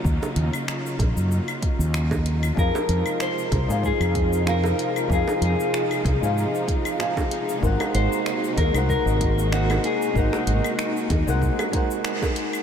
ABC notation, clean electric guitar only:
X:1
M:4/4
L:1/8
Q:"Swing 16ths" 1/4=95
K:Fphr
V:1 name="Clean electric guitar"
z8 | B2 c2 A2 B2 | A A6 z | z c2 B B2 G A |
E6 z2 |]